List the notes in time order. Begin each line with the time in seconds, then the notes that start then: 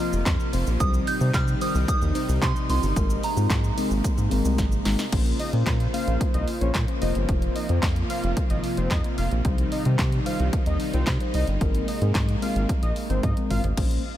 Already playing: C3 F3 A#3 F4 F6
0.00 A#3 C4 F4 D#5
0.13 F1, shaker
0.26 F2, kick, snare, clap, closed hi-hat, shaker
0.40 shaker
0.53 F1 A#3 C4 F4 C5, open hi-hat, shaker
0.67 A#1, shaker
0.80 C2 D#3 G3 C4 D#4 C5 D#6, kick, closed hi-hat, shaker
0.94 shaker
1.07 G6, open hi-hat, shaker
1.20 C3 G3 C4 D#4 C5, shaker
1.34 C3 F6, kick, snare, clap, closed hi-hat, shaker
1.48 shaker
1.61 G3 C4 D#4 C5 D#6, open hi-hat, shaker
1.75 C2, shaker
1.88 D#6, kick, closed hi-hat, shaker
2.02 D#2, shaker
2.15 G3 C4 D#4 C5, open hi-hat, shaker
2.29 C2, shaker
2.42 C3 C6, kick, snare, clap, closed hi-hat, shaker
2.56 shaker
2.69 C2 G3 C4 D#4 F4 C6, open hi-hat, shaker
2.83 G1, shaker
2.96 G#1 G#3 A#3 C4 D#4 A#4, kick, closed hi-hat, shaker
3.10 shaker
3.23 A#5, open hi-hat, shaker
3.37 G#2 G#3 C4 D#4 F4, shaker
3.50 G#2, kick, snare, clap, closed hi-hat, shaker
3.64 shaker
3.77 G#3 C4 D#4 A#4, open hi-hat, shaker
3.91 G#1, shaker
4.04 kick, closed hi-hat, shaker
4.18 G#2, shaker
4.31 G#1 G#3 C4 D#4 A#4, open hi-hat, shaker
4.45 C2, shaker
4.58 G#1, kick, snare, closed hi-hat, shaker
4.72 shaker
4.85 G#1 G#3 C4 D#4 A#4, snare, open hi-hat, shaker
4.99 snare, shaker
5.12 A#1 C#3 A#3 C#4 F4 C5, kick, closed hi-hat, crash
5.26 closed hi-hat
5.39 D#5, open hi-hat
5.53 A#2 A#3 C#4 C5, closed hi-hat
5.66 A#2, kick, snare, clap, closed hi-hat
5.80 closed hi-hat
5.93 A#3 C#4 C5 F5, open hi-hat
6.07 A#1, closed hi-hat
6.21 kick, closed hi-hat
6.34 C2 D#5, closed hi-hat
6.48 open hi-hat
6.61 A#1 A#3 C#4 C5 C#5, closed hi-hat
6.74 A#2, kick, snare, clap, closed hi-hat
6.88 A#3 C#4 C5, closed hi-hat
7.01 F1 C3 F3 A#3 F4 C5 D#5, open hi-hat
7.15 G1, closed hi-hat
7.29 F1, kick, closed hi-hat
7.42 closed hi-hat
7.56 D#5, open hi-hat
7.69 F2 A#3 F4 C5, closed hi-hat
7.83 F2, kick, snare, clap, closed hi-hat
7.96 closed hi-hat
8.09 A#3 F4 C5 F5, open hi-hat
8.24 F1, closed hi-hat
8.37 kick, closed hi-hat
8.50 G#1 D#5, closed hi-hat
8.64 open hi-hat
8.77 F1 A#3 F4 C5, closed hi-hat
8.91 F2 D#5, kick, snare, clap, closed hi-hat
9.04 A#3 F4 A#4, closed hi-hat
9.18 F1 F5, open hi-hat
9.31 A#1, closed hi-hat
9.45 C2 G3 D#4 C5, kick, closed hi-hat
9.58 closed hi-hat
9.72 D#5, open hi-hat
9.85 C3 G3 D#4 C5, closed hi-hat
9.99 C3, kick, snare, clap, closed hi-hat
10.12 closed hi-hat
10.26 G3 D#4 C5 F5, open hi-hat
10.40 C2, closed hi-hat
10.53 kick, closed hi-hat
10.66 D#2 D#5, closed hi-hat
10.80 open hi-hat
10.93 C2 G3 D#4 F4 C5, closed hi-hat
11.07 C3, kick, snare, clap, closed hi-hat
11.20 G3 D#4 C5, closed hi-hat
11.34 C2 D#5, open hi-hat
11.47 G1, closed hi-hat
11.61 G#1 G#3 C4 A#4, kick, closed hi-hat
11.75 closed hi-hat
11.88 D#5, open hi-hat
12.01 G#2 G#3 C4 A#4, closed hi-hat
12.15 G#2, kick, snare, clap, closed hi-hat
12.29 closed hi-hat
12.42 G#3 C4 A#4 F5, open hi-hat
12.56 G#1, closed hi-hat
12.69 kick, closed hi-hat
12.82 A#1 D#5, closed hi-hat
12.96 open hi-hat
13.10 G#1 G#3 C4 A#4 C5, closed hi-hat
13.23 G#2 D#5, kick, closed hi-hat, high tom
13.37 G#3 C4 A#4, closed hi-hat
13.50 G#1 F5, mid tom, open hi-hat
13.64 G#1, closed hi-hat, floor tom
13.77 A#1 A#3 C#4 C5, kick, closed hi-hat, crash
13.91 closed hi-hat